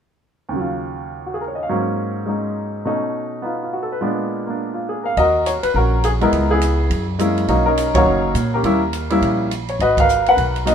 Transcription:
0.49 1.67 D#2 soft
0.49 1.69 C#3 soft
0.56 1.68 F#3 soft
0.56 1.72 F4 soft
1.26 1.35 F#4 soft
1.34 1.44 G#4 soft
1.41 1.53 A#4 soft
1.48 1.59 C#5 soft
1.55 1.64 D#5 soft
1.63 1.72 F5 soft
1.69 2.85 G#2 soft
1.69 2.85 F#3 soft
1.69 2.86 A#3 soft
1.69 2.26 C#4 medium
2.26 2.85 G#3 soft
2.26 2.85 C#4 soft
2.26 2.85 D#4 soft
2.85 4.01 B2 soft
2.85 4.01 A3 soft
2.85 4.02 C#4 soft
2.85 3.42 D#4 medium
3.42 4.00 B3 soft
3.42 4.01 D#4 soft
3.42 3.62 F4 soft
3.63 3.77 F4 soft
3.73 3.89 F#4 soft
3.83 3.97 A4 soft
3.92 4.06 B4 soft
4.01 5.17 A#2 soft
4.01 5.17 G#3 soft
4.01 5.17 B3 soft
4.01 4.49 D4 soft
4.47 5.16 A#3 soft
4.47 5.18 D4 soft
4.74 4.94 F4 soft
4.89 5.10 G#4 soft
5.03 5.18 A#4 soft
5.03 5.16 F5 medium
5.17 5.60 D#2 medium
5.17 5.72 F#4 medium
5.17 5.72 A#4 medium
5.17 5.47 D#5 medium
5.17 kick soft
5.17 ride soft
5.46 5.51 C#5 medium
5.46 hi-hat pedal soft
5.46 ride medium
5.63 5.74 B4 medium
5.63 muted upright bass stroke soft
5.63 ride soft
5.74 6.29 A#1 medium
5.74 6.30 C#4 medium
5.74 6.30 F#4 medium
5.74 6.05 A#4 medium
5.74 kick soft
6.04 6.10 G#4 medium
6.04 hi-hat pedal soft
6.04 ride soft
6.21 6.59 G#3 medium
6.21 6.51 B3 medium
6.21 6.51 E4 medium
6.21 6.49 A#4 medium
6.21 6.60 D#5 soft
6.21 ride soft
6.32 6.87 C#2 medium
6.32 kick soft
6.32 ride soft
6.51 6.89 B3 soft
6.51 7.05 E4 soft
6.51 7.04 G#4 medium
6.61 hi-hat pedal soft
6.61 ride medium
6.90 7.45 F#2 medium
6.90 kick soft
6.90 ride soft
7.19 7.48 G#3 medium
7.19 7.47 A#3 soft
7.19 7.48 C#4 soft
7.19 7.49 E4 medium
7.19 hi-hat pedal medium
7.19 ride soft
7.38 ride soft
7.48 8.03 B1 medium
7.48 7.64 F#3 medium
7.48 7.64 A#3 medium
7.48 7.64 C#4 medium
7.48 7.65 D#4 medium
7.48 kick soft
7.48 ride soft
7.66 7.94 C#4 medium
7.66 7.94 D#4 medium
7.66 7.93 A#4 medium
7.78 hi-hat pedal medium
7.78 ride medium
7.94 8.33 F#3 medium
7.94 8.33 A#3 soft
7.94 8.33 C#4 soft
7.94 8.33 D#4 medium
7.94 8.50 F#4 medium
7.94 8.50 A#4 medium
7.94 8.49 C#5 medium
7.94 kick medium
7.94 ride medium
8.06 8.33 F#1 medium
8.35 8.62 A#2 medium
8.35 hi-hat pedal medium
8.35 ride soft
8.54 8.64 C#4 soft
8.54 9.08 G4 soft
8.54 9.07 A#4 medium
8.63 9.19 D#2 medium
8.63 8.80 G3 medium
8.63 8.80 A#3 medium
8.63 8.80 C#4 medium
8.63 8.81 E4 medium
8.63 kick soft
8.63 ride soft
8.93 hi-hat pedal soft
8.93 ride medium
9.10 9.48 G3 medium
9.10 9.48 A#3 medium
9.10 9.49 C#4 soft
9.10 9.49 E4 medium
9.10 ride soft
9.22 9.77 A#1 medium
9.22 kick soft
9.22 ride soft
9.51 hi-hat pedal soft
9.51 ride soft
9.69 9.74 C#5 medium
9.69 ride soft
9.79 10.34 G#1 medium
9.79 10.35 F#4 medium
9.79 9.99 B4 medium
9.79 9.97 D#5 medium
9.79 kick soft
9.79 ride soft
9.97 10.27 A#4 medium
9.97 10.27 B4 medium
9.97 10.28 F5 medium
9.97 kick medium
9.97 ride medium
10.09 hi-hat pedal medium
10.26 10.75 A#4 medium
10.26 10.75 B4 medium
10.26 10.54 F#5 medium
10.26 ride soft
10.37 10.75 B1 medium
10.37 kick soft
10.37 ride soft
10.56 ride soft
10.65 10.75 F#3 soft
10.65 10.75 A#3 soft
10.65 10.75 B3 soft
10.65 10.75 D#4 medium
10.65 10.75 D#5 medium
10.65 hi-hat pedal soft
10.65 ride medium

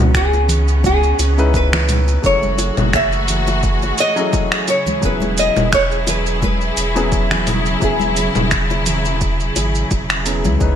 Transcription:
0.00 1.13 C#2 loud
0.00 1.34 G#3 medium
0.00 2.21 B3 medium
0.00 1.34 C#4 medium
0.00 2.21 C#4 medium
0.00 1.34 D#4 medium
0.00 1.35 E4 medium
0.00 0.18 F#4 medium
0.00 1.35 B4 medium
0.14 0.85 G#4 medium
0.14 finger snap medium
0.14 kick loud
0.14 shaker soft
0.33 high bongo medium
0.33 shaker soft
0.49 open hi-hat medium
0.49 low conga medium
0.49 shaker medium
0.68 shaker soft
0.84 1.51 G#4 loud
0.84 kick loud
0.84 high bongo medium
0.84 high conga medium
0.84 shaker soft
1.03 shaker soft
1.19 2.18 C#2 loud
1.19 open hi-hat medium
1.19 high bongo medium
1.19 shaker medium
1.38 1.64 G#3 medium
1.38 1.64 C#4 medium
1.38 1.64 D#4 medium
1.38 1.65 E4 medium
1.38 1.65 B4 loud
1.38 shaker soft
1.54 2.26 B4 loud
1.54 kick loud
1.54 shaker soft
1.73 finger snap medium
1.73 high bongo medium
1.73 low conga loud
1.73 shaker soft
1.89 open hi-hat medium
1.89 low conga medium
1.89 shaker medium
2.08 high bongo soft
2.08 shaker soft
2.22 2.71 F#1 medium
2.22 4.66 E3 medium
2.22 4.13 F#3 medium
2.22 4.13 A3 medium
2.22 4.66 A3 medium
2.22 4.14 C#4 medium
2.22 4.14 E4 medium
2.22 4.66 F#4 medium
2.22 10.57 G#4 medium
2.22 4.14 G#4 medium
2.22 2.95 C#5 loud
2.22 kick loud
2.22 shaker soft
2.43 high conga medium
2.43 shaker soft
2.58 open hi-hat medium
2.58 high bongo medium
2.58 shaker medium
2.77 3.92 F#1 loud
2.77 low conga medium
2.77 shaker soft
2.93 4.00 E5 loud
2.93 finger snap medium
2.93 kick loud
2.93 high bongo medium
2.93 shaker soft
3.12 shaker soft
3.28 open hi-hat medium
3.28 low conga medium
3.28 shaker medium
3.47 high bongo medium
3.47 shaker soft
3.63 kick loud
3.63 shaker soft
3.82 high bongo medium
3.82 shaker soft
3.98 4.69 D#5 loud
3.98 open hi-hat medium
3.98 shaker medium
4.16 4.43 F#3 medium
4.16 4.43 A3 medium
4.16 4.43 C#4 medium
4.16 4.44 E4 medium
4.16 4.44 G#4 medium
4.16 shaker soft
4.33 kick loud
4.33 high bongo medium
4.33 shaker soft
4.52 finger snap medium
4.52 shaker soft
4.67 10.76 C#3 medium
4.67 10.57 F#3 medium
4.67 10.57 E4 medium
4.67 5.01 C#5 loud
4.67 open hi-hat medium
4.67 high bongo medium
4.67 shaker medium
4.86 high conga medium
4.86 low conga medium
4.86 shaker soft
5.01 5.50 E1 loud
5.01 6.92 F#3 medium
5.01 6.92 B3 medium
5.01 6.93 C#4 medium
5.01 6.93 E4 medium
5.01 6.93 G#4 medium
5.01 5.40 B4 loud
5.01 kick loud
5.01 shaker soft
5.20 high bongo medium
5.20 high conga medium
5.20 shaker soft
5.38 5.71 D#5 loud
5.38 open hi-hat medium
5.38 shaker medium
5.56 6.72 E1 loud
5.56 high bongo medium
5.56 low conga medium
5.56 shaker soft
5.73 6.06 C#5 loud
5.73 finger snap medium
5.73 kick loud
5.73 shaker soft
5.92 shaker soft
6.07 6.43 B4 medium
6.07 open hi-hat medium
6.07 high bongo medium
6.07 low conga medium
6.07 shaker medium
6.26 shaker soft
6.42 7.79 B4 loud
6.42 kick loud
6.42 high bongo medium
6.42 high conga medium
6.42 shaker soft
6.61 shaker soft
6.77 7.76 E1 loud
6.77 open hi-hat medium
6.77 shaker medium
6.96 7.22 F#3 medium
6.96 7.22 B3 medium
6.96 7.22 C#4 medium
6.96 7.23 E4 medium
6.96 7.23 G#4 loud
6.96 high bongo medium
6.96 shaker soft
7.12 kick loud
7.12 shaker soft
7.31 finger snap medium
7.31 high bongo soft
7.31 low conga medium
7.31 shaker soft
7.47 open hi-hat medium
7.47 low conga medium
7.47 shaker medium
7.66 shaker soft
7.80 8.29 E1 loud
7.80 9.71 F#3 medium
7.80 9.71 B3 medium
7.80 9.71 C#4 medium
7.80 9.72 E4 medium
7.80 10.23 G#4 medium
7.80 9.72 G#4 medium
7.80 kick loud
7.80 high bongo medium
7.80 shaker soft
8.00 high conga medium
8.00 shaker soft
8.17 open hi-hat medium
8.17 high bongo soft
8.17 shaker medium
8.35 9.51 E1 loud
8.35 low conga medium
8.35 shaker soft
8.51 finger snap medium
8.51 kick loud
8.51 shaker soft
8.70 high bongo medium
8.70 shaker soft
8.86 open hi-hat medium
8.86 low conga medium
8.86 shaker medium
9.05 high bongo soft
9.05 shaker soft
9.21 kick loud
9.21 shaker soft
9.40 shaker soft
9.56 9.84 G#1 medium
9.56 open hi-hat medium
9.56 high bongo medium
9.56 shaker medium
9.75 shaker soft
9.91 10.46 E1 medium
9.91 kick loud
9.91 high bongo soft
9.91 shaker soft
10.10 finger snap medium
10.10 shaker soft
10.25 10.57 F#3 medium
10.25 10.57 B3 medium
10.25 10.57 C#4 medium
10.25 10.57 E4 medium
10.25 10.58 G#4 medium
10.25 open hi-hat medium
10.25 shaker medium
10.45 10.57 C#2 medium
10.45 high bongo medium
10.45 high conga medium
10.45 low conga medium
10.45 shaker soft
10.59 10.76 C#2 loud
10.59 10.76 E3 medium
10.59 10.76 G#3 medium
10.59 10.76 B3 medium
10.59 10.76 C#4 medium
10.59 10.76 D#4 medium
10.59 10.76 E4 medium
10.59 10.76 B4 medium
10.59 10.76 C#5 medium
10.59 kick loud
10.59 high bongo soft
10.59 shaker soft

